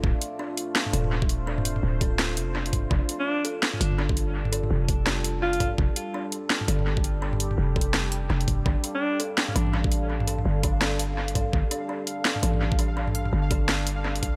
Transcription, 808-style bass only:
X:1
M:4/4
L:1/16
Q:"Swing 16ths" 1/4=167
K:F
V:1 name="808-style bass" clef=bass
D,,,2 z8 _E,,,6- | _E,,,4 D,,,6 F,,,6 | F,,,2 z8 G,,,6- | G,,,4 F,,,8- F,,,2 z2 |
F,,,2 z8 G,,,6- | G,,,4 F,,,8 F,,,2 F,,,2 | G,,, z8 z A,,,6- | A,,,4 G,,,8- G,,,2 z2 |
G,,, z8 z A,,,6- | A,,,4 G,,,8- G,,,2 z2 |]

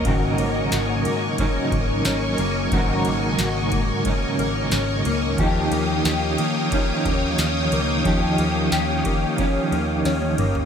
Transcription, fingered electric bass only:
X:1
M:4/4
L:1/16
Q:1/4=90
K:Ebdor
V:1 name="Fingered electric bass" clef=bass
A,,,2 A,,,2 A,,,2 A,,3 z A,,,2 A,,,2 G,,,2 | A,,,2 A,,,2 A,,,2 A,,3 z A,,,2 A,,,2 D,,2 | E,,2 E,,2 E,,2 E,3 z E,,2 E,,2 D,,2 | E,,2 E,,2 E,,2 E,3 z E,,2 E,,2 =G,,,2 |]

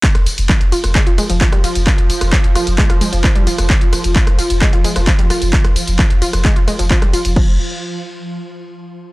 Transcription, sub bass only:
X:1
M:4/4
L:1/16
Q:1/4=131
K:Ab
V:1 name="Sub bass" clef=bass
z F,,, z F,,, z F,,, z F,,, z F,,, z F,,, z F,,, z F,,, | z F,,, z F,,, z F,,, z F,,, z F,,, z F,,, z F,,, z F,,, | z F,,, z F,,, z F,,, z F,,, z F,,, z F,,, z F,,, z F,,, | z F,,, z F,,, z F,,, z F,,, z F,,, z F,,, z F,,, z F,,, |
F,,,2 z12 z2 |]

